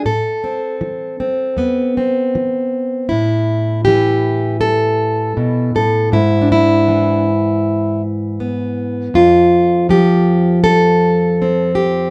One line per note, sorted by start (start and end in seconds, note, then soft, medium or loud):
0.00 0.56 A3 soft
0.05 0.73 A2 medium
0.05 3.09 A4 medium
0.44 1.19 C4 soft
0.81 1.49 E3 medium
1.20 1.95 C4 soft
1.57 2.25 E2 medium
1.57 3.06 B3 soft
1.97 3.06 C4 soft
2.35 3.03 E3 medium
3.09 5.37 A2 medium
3.09 3.84 E4 medium
3.85 6.09 E3 medium
3.85 4.60 G4 medium
4.61 5.75 A4 loud
5.37 5.74 B2 medium
5.75 6.13 A2 medium
5.75 6.13 A4 medium
6.12 9.08 G#2 medium
6.12 6.50 E4 medium
6.42 7.24 D4 medium
6.52 8.01 E4 medium
6.88 9.09 E3 medium
8.40 9.14 B3 soft
9.14 12.10 F2 medium
9.14 9.89 F4 medium
9.89 12.10 F3 medium
9.89 10.63 G4 medium
10.64 11.75 A4 loud
11.42 12.10 C4 soft
11.75 12.10 G4 medium